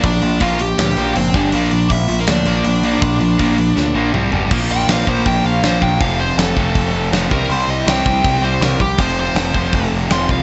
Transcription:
<<
  \new Staff \with { instrumentName = "Lead electric guitar" } { \time 4/4 \key bes \lydian \tempo 4 = 161 <d' d''>4 <f' f''>8 <g' g''>4. <c' c''>8 <d' d''>8~ | <d' d''>4 <e' e''>8. <bes bes'>16 <d' d''>2~ | <d' d''>2. r4 | r8 g''8 f''8 c''8 g''8 f''8 c''8 g''8 |
f''8 c''8 a'2 r8 bes'8 | c''8 ees''8 g''4. c''8 bes'8 g'8 | c''8 c''2 r8 c'''8 f''8 | }
  \new Staff \with { instrumentName = "Distorted electric guitar" } { \time 4/4 \key bes \lydian <bes, f bes d' f'>2.~ <bes, f bes d' f'>8 r8 | <bes, f bes d' f' bes'>1 | <bes, f bes d' f' bes'>2. r4 | <bes, f bes d'>4. <bes, f bes d'>2~ <bes, f bes d'>8 |
<f, c f a c'>4. <f, c f a c'>2 <c g c' e'>8~ | <c g c' e'>4 <c g c' e'>2~ <c g c' e'>8 r8 | <f, c f a c' f'>4. <f, c f a c' f'>2~ <f, c f a c' f'>8 | }
  \new Staff \with { instrumentName = "Distorted electric guitar" } { \clef bass \time 4/4 \key bes \lydian <bes, f>8 <bes, f>8 <bes, f bes>8 <bes, f>8 <bes, f>8 <bes, f bes>8 <bes, f>8 <g, d g>8 | <bes, f bes>8 <bes, f>8 <bes, f>8 <bes, f>8 <bes, f>8 <bes, f bes>8 <bes, f>8 <bes, f bes>8 | <bes, f>8 <bes, f>8 <bes, f bes>8 <bes, f>8 <bes, f>8 <bes, f bes>8 <c g c'>8 <g, d g>8 | <bes, f bes>4. <bes, f bes>4. <bes, f bes>4 |
<f, c f>4. <c f>4. <f, c f>8 <c g c'>8~ | <c g c'>4 <c g c'>4. <c g c'>4 r8 | <f, c f>4. <f, c f>4. <f, c f>4 | }
  \new Staff \with { instrumentName = "Distorted electric guitar" } { \clef bass \time 4/4 \key bes \lydian <bes, f>8 <bes, f>8 <bes, f bes>8 <bes, f>8 <bes, f>8 <bes, f bes>8 <bes, f>8 <g d' g'>8 | <bes, f bes>8 <bes, f>8 <bes, f>8 <bes, f>8 <bes, f>8 <bes, f bes>8 <bes, f>8 <bes, f bes>8 | <bes, f>8 <bes, f>8 <bes, f bes>8 <bes, f>8 <bes, f>8 <bes, f bes>8 <c g c'>8 <g d' g'>8 | <bes, f bes d'>1 |
<f, c f a c'>2.~ <f, c f a c'>8 <c g c' e'>8~ | <c g c' e'>2.~ <c g c' e'>8 r8 | <f, c f a c' f'>1 | }
  \new Staff \with { instrumentName = "Picked electric bass" } { \clef bass \time 4/4 \key bes \lydian bes,,8 bes,,8 bes,,4 d,8 bes,,8 fis,,8 g,,8 | bes,,8 bes,,8 bes,,8 bes,,8 d,8 bes,,8 bes,,4 | bes,,8 bes,,8 bes,,4 d,8 bes,,8 c,8 g,,8 | bes,,8 bes,,8 bes,,8 bes,,8 bes,,8 bes,,8 bes,,8 bes,,8 |
f,,4 f,,8 f,,8 f,,8 f,,8 f,,8 c,8 | c,8 c,8 c,8 c,8 c,8 c,8 c,8 c,8 | f,,4 f,,8 f,,8 f,,8 f,,8 f,,8 c,8 | }
  \new DrumStaff \with { instrumentName = "Drums" } \drummode { \time 4/4 <hho bd>8 hho8 <hho bd>8 hho8 <hho sn>8 hho8 hho8 <hho bd>8 | hho8 hho8 <hho bd>8 hho8 <hho sn>8 hho8 hho8 hho8 | <hho bd>8 hho8 <hho bd>8 hho8 sn4 toml8 tomfh8 | <cymc bd>4 <hho sn>8 bd8 <hho bd>4 <hho sn>8 bd8 |
<hho bd>4 <hho sn>8 bd8 <hho bd>4 <hho sn>8 bd8 | hho4 <hho sn>8 bd8 <hho bd>4 <hho sn>8 bd8 | <hho bd>4 <hho sn>8 bd8 <hho bd>4 <hho sn>8 bd8 | }
>>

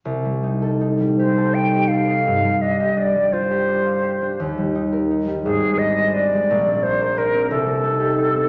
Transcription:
<<
  \new Staff \with { instrumentName = "Flute" } { \time 6/8 \key c \dorian \tempo 4. = 57 r4. c''8 g''8 f''8~ | f''8 ees''8 d''8 c''4. | r4. aes'8 ees''8 d''8~ | d''8 c''8 bes'8 a'4. | }
  \new Staff \with { instrumentName = "Harp" } { \time 6/8 \key c \dorian c,16 g16 ees'16 a'16 ees'16 g16 g'16 a'16 ees'16 g'16 a'16 ees'16 | g,16 g16 d'16 g'16 d'16 g16 f'16 g'16 d'16 f'16 g'16 d'16 | ees,16 g16 ees'16 bes'16 ees'16 g16 aes,,16 aes16 d'16 c''16 d'16 aes16 | bes,,16 c'16 d'16 bes'16 d'16 c'16 c,16 c'16 ees'16 g'16 ees'16 c'16 | }
>>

